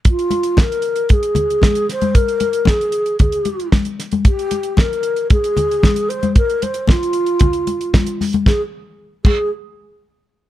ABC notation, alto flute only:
X:1
M:4/4
L:1/8
Q:1/4=114
K:Fm
V:1 name="Alto flute"
F2 B2 A3 c | B2 A2 A2 z2 | G2 B2 A3 c | B c F4- F z |
A z2 A z4 |]